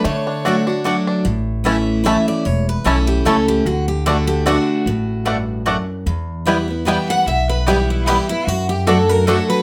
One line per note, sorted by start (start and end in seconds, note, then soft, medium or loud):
0.00 0.26 D4 medium
0.04 0.95 D3 medium
0.04 0.82 D3 medium
0.04 0.63 A3 medium
0.04 0.81 C#5 medium
0.04 0.82 C#5 medium
0.27 0.44 D4 medium
0.45 0.67 F#3 medium
0.45 0.55 A3 medium
0.45 0.67 A3 medium
0.45 0.66 D4 medium
0.45 0.67 D4 loud
0.45 0.55 F#4 medium
0.45 0.66 F#4 loud
0.45 0.55 D5 medium
0.45 0.55 F#5 medium
0.67 0.84 D4 medium
0.67 0.85 D4 medium
0.67 0.85 F#4 medium
0.84 1.23 F#3 loud
0.84 0.95 A3 medium
0.84 1.24 A3 loud
0.84 1.06 D4 medium
0.84 1.24 D4 loud
0.84 0.95 F#4 loud
0.84 1.24 F#4 medium
0.84 0.95 D5 loud
0.84 0.96 F#5 loud
1.07 1.25 D4 medium
1.25 2.15 A1 medium
1.25 2.02 A2 medium
1.64 2.02 E3 medium
1.64 2.03 A3 loud
1.64 1.75 A3 medium
1.64 1.76 A3 medium
1.64 2.04 C#4 medium
1.64 1.76 C#4 medium
1.64 1.75 E4 medium
1.64 2.04 E4 loud
1.64 1.76 E4 medium
1.64 1.75 C#5 medium
1.64 1.75 A5 loud
2.04 2.43 E3 loud
2.04 2.43 A3 loud
2.04 2.16 A3 medium
2.04 2.44 C#4 loud
2.04 2.16 C#4 medium
2.04 2.16 E4 medium
2.04 2.44 E4 loud
2.04 2.16 E4 medium
2.04 2.16 C#5 loud
2.04 2.27 E5 medium
2.04 2.16 A5 loud
2.28 2.46 D5 medium
2.45 2.76 E1 medium
2.45 3.22 E2 medium
2.45 2.67 C#5 medium
2.69 2.86 B4 medium
2.84 3.20 B1 medium
2.84 3.23 E3 medium
2.84 2.95 A3 medium
2.84 3.24 A3 loud
2.84 2.96 A3 medium
2.84 3.24 C#4 loud
2.84 2.96 C#4 medium
2.84 2.95 E4 loud
2.84 3.25 E4 loud
2.84 2.96 E4 medium
2.84 3.07 A4 medium
2.84 2.96 C#5 medium
2.84 2.96 A5 loud
3.07 3.25 G4 medium
3.25 3.60 C#2 medium
3.25 3.64 E3 medium
3.25 3.35 A3 loud
3.25 3.64 A3 loud
3.25 3.36 A3 medium
3.25 3.36 C#4 medium
3.25 3.65 C#4 medium
3.25 3.36 E4 medium
3.25 3.65 E4 loud
3.25 3.48 A4 medium
3.25 3.36 C#5 loud
3.25 3.36 A5 loud
3.48 3.66 G4 medium
3.66 4.56 D2 medium
3.66 4.05 D3 medium
3.66 3.88 F#4 medium
3.88 4.05 G4 medium
4.06 4.44 D3 loud
4.06 4.16 A3 medium
4.06 4.45 A3 medium
4.06 4.16 D4 medium
4.06 4.45 D4 medium
4.06 4.16 F#4 medium
4.06 4.46 F#4 medium
4.06 4.27 A4 loud
4.06 4.16 D5 loud
4.06 4.16 F#5 loud
4.27 4.45 G4 medium
4.46 4.84 D3 medium
4.46 4.56 A3 medium
4.46 4.85 A3 loud
4.46 4.56 D4 medium
4.46 4.85 D4 loud
4.46 4.56 F#4 medium
4.46 5.63 F#4 medium
4.46 4.85 F#4 loud
4.46 4.56 D5 loud
4.46 4.56 F#5 loud
4.86 5.76 A1 medium
4.86 5.63 A2 medium
5.25 5.64 G2 medium
5.25 5.36 A3 medium
5.25 5.36 D4 medium
5.25 5.36 F#4 medium
5.25 5.36 D5 medium
5.25 5.36 F#5 loud
5.66 6.04 F#2 medium
5.66 5.76 A3 medium
5.66 5.77 D4 medium
5.66 5.76 F#4 medium
5.66 5.76 D5 loud
5.66 5.76 F#5 loud
6.06 6.96 E2 medium
6.06 6.83 E2 medium
6.46 6.67 E3 medium
6.46 6.68 G3 medium
6.46 6.57 G3 medium
6.46 6.56 B3 medium
6.46 6.68 B3 medium
6.46 6.57 B3 medium
6.46 6.56 E4 medium
6.46 6.67 E4 loud
6.46 6.57 E4 medium
6.46 6.56 B4 medium
6.46 6.57 G5 loud
6.68 6.85 B3 soft
6.68 6.86 E4 medium
6.85 7.24 E3 medium
6.85 7.25 G3 medium
6.85 6.97 G3 medium
6.85 7.25 B3 loud
6.85 6.97 B3 medium
6.85 6.96 E4 loud
6.85 7.25 E4 loud
6.85 6.97 E4 medium
6.85 6.97 B4 loud
6.85 7.07 G5 medium
6.85 6.97 G5 loud
6.85 7.09 G5 medium
7.09 7.26 F#5 medium
7.09 7.27 F#5 loud
7.27 8.17 B1 medium
7.27 8.04 B2 medium
7.27 7.48 E5 medium
7.27 7.49 E5 medium
7.49 7.67 B4 medium
7.49 7.66 B4 medium
7.66 8.05 E3 medium
7.66 7.77 G3 medium
7.66 8.06 G3 loud
7.66 7.77 B3 medium
7.66 8.06 B3 loud
7.66 7.77 E4 medium
7.66 8.07 E4 loud
7.66 7.89 G4 medium
7.66 7.88 G4 medium
7.66 7.77 B4 loud
7.66 7.77 G5 medium
7.90 8.10 E4 medium
7.90 8.07 E4 medium
8.06 8.28 E3 medium
8.06 8.17 G3 medium
8.06 8.29 G3 loud
8.06 8.16 B3 medium
8.06 8.18 B3 medium
8.06 8.29 B3 loud
8.06 8.17 E4 loud
8.06 8.18 E4 medium
8.06 8.28 E4 loud
8.06 8.29 G4 medium
8.06 8.17 B4 loud
8.06 8.17 G5 loud
8.29 8.47 B3 medium
8.29 8.48 E4 medium
8.29 8.48 E4 loud
8.29 8.47 E4 medium
8.46 9.37 F#2 medium
8.46 9.24 F#2 medium
8.46 8.69 F#4 medium
8.69 8.87 G4 medium
8.69 8.86 G4 medium
8.87 9.25 F#3 medium
8.87 8.97 A3 medium
8.87 9.26 A3 medium
8.87 8.97 A3 medium
8.87 8.98 D4 medium
8.87 9.26 D4 loud
8.87 8.97 F#4 medium
8.87 9.26 F#4 loud
8.87 9.09 A4 medium
8.87 9.12 A4 medium
8.87 8.97 D5 loud
8.87 8.97 F#5 medium
9.09 9.27 A#4 loud
9.09 9.27 A#4 medium
9.27 9.62 F#3 loud
9.27 9.37 A3 loud
9.27 9.38 A3 medium
9.27 9.62 A3 loud
9.27 9.38 D4 medium
9.27 9.62 D4 medium
9.27 9.37 F#4 medium
9.27 9.62 F#4 loud
9.27 9.48 A4 medium
9.27 9.49 A4 medium
9.27 9.37 D5 loud
9.27 9.37 F#5 loud
9.49 9.62 B4 medium
9.49 9.62 B4 loud